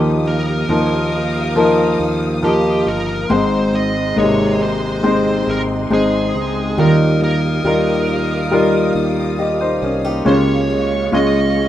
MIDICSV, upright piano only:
0, 0, Header, 1, 2, 480
1, 0, Start_track
1, 0, Tempo, 869565
1, 1824, Time_signature, 4, 2, 24, 8
1, 6450, End_track
2, 0, Start_track
2, 0, Title_t, "Upright piano"
2, 0, Program_c, 0, 0
2, 0, Note_on_c, 0, 53, 64
2, 0, Note_on_c, 0, 58, 59
2, 0, Note_on_c, 0, 63, 55
2, 0, Note_on_c, 0, 67, 63
2, 23, Control_c, 0, 64, 127
2, 357, Note_off_c, 0, 53, 0
2, 358, Note_off_c, 0, 58, 0
2, 359, Note_off_c, 0, 63, 0
2, 361, Note_off_c, 0, 67, 0
2, 383, Note_on_c, 0, 53, 69
2, 384, Note_on_c, 0, 58, 59
2, 387, Note_on_c, 0, 63, 60
2, 389, Note_on_c, 0, 70, 67
2, 839, Note_off_c, 0, 53, 0
2, 840, Note_off_c, 0, 58, 0
2, 841, Note_off_c, 0, 63, 0
2, 842, Note_off_c, 0, 70, 0
2, 859, Note_on_c, 0, 53, 74
2, 862, Note_on_c, 0, 58, 65
2, 864, Note_on_c, 0, 63, 62
2, 867, Note_on_c, 0, 70, 76
2, 1317, Note_off_c, 0, 53, 0
2, 1319, Note_off_c, 0, 58, 0
2, 1320, Note_off_c, 0, 63, 0
2, 1321, Note_off_c, 0, 70, 0
2, 1338, Note_on_c, 0, 53, 61
2, 1339, Note_on_c, 0, 58, 59
2, 1342, Note_on_c, 0, 63, 58
2, 1343, Note_on_c, 0, 70, 68
2, 1797, Note_off_c, 0, 53, 0
2, 1797, Note_off_c, 0, 58, 0
2, 1799, Note_off_c, 0, 63, 0
2, 1799, Note_off_c, 0, 70, 0
2, 1819, Note_on_c, 0, 56, 63
2, 1822, Note_on_c, 0, 60, 60
2, 1822, Note_on_c, 0, 63, 53
2, 1823, Note_on_c, 0, 44, 54
2, 1826, Note_on_c, 0, 72, 72
2, 1831, Control_c, 0, 64, 0
2, 1936, Control_c, 0, 64, 127
2, 2277, Note_off_c, 0, 56, 0
2, 2279, Note_off_c, 0, 60, 0
2, 2279, Note_off_c, 0, 63, 0
2, 2281, Note_off_c, 0, 72, 0
2, 2297, Note_on_c, 0, 56, 68
2, 2298, Note_on_c, 0, 58, 48
2, 2301, Note_on_c, 0, 63, 63
2, 2302, Note_on_c, 0, 75, 71
2, 2335, Note_on_c, 0, 48, 67
2, 2337, Note_off_c, 0, 58, 0
2, 2521, Note_off_c, 0, 44, 0
2, 2756, Note_off_c, 0, 56, 0
2, 2758, Note_off_c, 0, 63, 0
2, 2759, Note_off_c, 0, 75, 0
2, 2775, Note_off_c, 0, 48, 0
2, 2776, Note_on_c, 0, 56, 62
2, 2780, Note_on_c, 0, 60, 61
2, 2781, Note_on_c, 0, 63, 59
2, 2782, Note_on_c, 0, 72, 70
2, 3236, Note_off_c, 0, 56, 0
2, 3238, Note_off_c, 0, 60, 0
2, 3238, Note_off_c, 0, 63, 0
2, 3239, Note_off_c, 0, 72, 0
2, 3258, Note_on_c, 0, 56, 65
2, 3261, Note_on_c, 0, 60, 57
2, 3265, Note_on_c, 0, 63, 58
2, 3265, Note_on_c, 0, 72, 72
2, 3717, Note_off_c, 0, 56, 0
2, 3718, Note_off_c, 0, 60, 0
2, 3720, Note_off_c, 0, 63, 0
2, 3720, Note_off_c, 0, 72, 0
2, 3741, Note_on_c, 0, 55, 62
2, 3743, Note_on_c, 0, 63, 61
2, 3744, Note_on_c, 0, 51, 51
2, 3744, Note_on_c, 0, 65, 55
2, 3746, Note_on_c, 0, 70, 66
2, 3751, Control_c, 0, 64, 0
2, 3846, Control_c, 0, 64, 127
2, 4198, Note_off_c, 0, 55, 0
2, 4199, Note_off_c, 0, 63, 0
2, 4200, Note_off_c, 0, 65, 0
2, 4201, Note_off_c, 0, 70, 0
2, 4221, Note_on_c, 0, 55, 67
2, 4225, Note_on_c, 0, 63, 58
2, 4226, Note_on_c, 0, 65, 58
2, 4230, Note_on_c, 0, 70, 73
2, 4442, Note_off_c, 0, 51, 0
2, 4678, Note_off_c, 0, 55, 0
2, 4680, Note_off_c, 0, 63, 0
2, 4681, Note_off_c, 0, 65, 0
2, 4683, Note_off_c, 0, 70, 0
2, 4699, Note_on_c, 0, 55, 75
2, 4703, Note_on_c, 0, 63, 62
2, 4704, Note_on_c, 0, 65, 70
2, 4708, Note_on_c, 0, 70, 82
2, 5157, Note_off_c, 0, 55, 0
2, 5159, Note_off_c, 0, 63, 0
2, 5160, Note_off_c, 0, 65, 0
2, 5162, Note_off_c, 0, 70, 0
2, 5182, Note_on_c, 0, 75, 55
2, 5184, Note_on_c, 0, 67, 44
2, 5297, Note_off_c, 0, 75, 0
2, 5298, Note_off_c, 0, 67, 0
2, 5304, Note_on_c, 0, 72, 61
2, 5307, Note_on_c, 0, 63, 52
2, 5418, Note_off_c, 0, 72, 0
2, 5420, Note_off_c, 0, 63, 0
2, 5425, Note_on_c, 0, 70, 49
2, 5428, Note_on_c, 0, 61, 43
2, 5538, Note_off_c, 0, 70, 0
2, 5540, Note_off_c, 0, 61, 0
2, 5548, Note_on_c, 0, 67, 49
2, 5551, Note_on_c, 0, 58, 42
2, 5657, Note_on_c, 0, 56, 61
2, 5661, Note_on_c, 0, 49, 53
2, 5661, Note_on_c, 0, 61, 57
2, 5661, Note_on_c, 0, 65, 59
2, 5663, Note_on_c, 0, 73, 67
2, 5671, Control_c, 0, 64, 0
2, 5757, Control_c, 0, 64, 127
2, 5774, Note_off_c, 0, 67, 0
2, 5775, Note_off_c, 0, 58, 0
2, 6116, Note_off_c, 0, 56, 0
2, 6118, Note_off_c, 0, 61, 0
2, 6118, Note_off_c, 0, 65, 0
2, 6119, Note_off_c, 0, 73, 0
2, 6138, Note_on_c, 0, 56, 65
2, 6140, Note_on_c, 0, 61, 60
2, 6143, Note_on_c, 0, 65, 58
2, 6145, Note_on_c, 0, 73, 66
2, 6360, Note_off_c, 0, 49, 0
2, 6450, Note_off_c, 0, 56, 0
2, 6450, Note_off_c, 0, 61, 0
2, 6450, Note_off_c, 0, 65, 0
2, 6450, Note_off_c, 0, 73, 0
2, 6450, End_track
0, 0, End_of_file